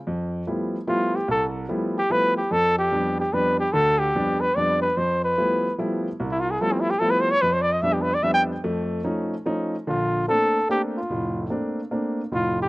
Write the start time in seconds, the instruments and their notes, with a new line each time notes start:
0.07 grand piano F2
0.47 grand piano F3 G3 A3 B3 E4
0.87 grand piano F3 G3 A3 B3 E4, trumpet F4
1.16 trumpet G4
1.28 grand piano C2, trumpet A4
1.69 grand piano F3 G3 A3 B3 E4
1.98 trumpet G4
2.10 grand piano F3 G3 A3 B3 E4, trumpet B4
2.37 trumpet G4
2.51 grand piano F2, trumpet A4
2.79 trumpet G4
2.92 grand piano F2 G3 B3 D4
3.20 trumpet G4
3.33 grand piano F2 G3 B3 D4, trumpet B4
3.60 trumpet G4
3.73 grand piano D2 D3, trumpet A4
3.99 trumpet G4
4.15 grand piano F2 G3 B3 D4
4.41 trumpet B4
4.55 grand piano F2 G3 B3 D4, trumpet D5
4.82 trumpet B4
4.97 grand piano F2, trumpet C5
5.24 trumpet B4
5.38 grand piano F3 G3 A3 B3 E4
5.78 grand piano F3 G3 A3 B3 E4
6.20 grand piano C2
6.31 trumpet E4
6.40 trumpet F4
6.51 trumpet G#4
6.61 grand piano F3 G3 A3 B3 E4, trumpet A4
6.72 trumpet C4
6.81 trumpet E4
6.90 trumpet G4
6.99 grand piano F3 G3 A3 B3 E4, trumpet A4
7.11 trumpet B4
7.21 trumpet C5
7.31 trumpet C#5
7.42 grand piano F2, trumpet B4
7.53 trumpet C5
7.62 trumpet D5
7.72 trumpet D#5
7.82 grand piano F2 G3 B3 D4, trumpet E5
7.93 trumpet G4
8.02 trumpet B4
8.14 trumpet D5
8.23 grand piano F2 G3 B3 D4, trumpet E5
8.34 trumpet G5
8.64 grand piano F2 A3
9.04 grand piano F3 A3 C#4 D#4
9.46 grand piano F3 A3 C#4 D#4
9.87 grand piano A#1 D3, trumpet F4
10.28 grand piano A3 A#3 C4 D4, trumpet A4
10.69 grand piano A3 A#3 C4 D4, trumpet G4
10.97 trumpet F4
11.10 grand piano F1 A2
11.50 grand piano A3 A#3 C4 D4
11.91 grand piano A3 A#3 C4 D4
12.32 grand piano F1 A2, trumpet F4
12.62 trumpet G4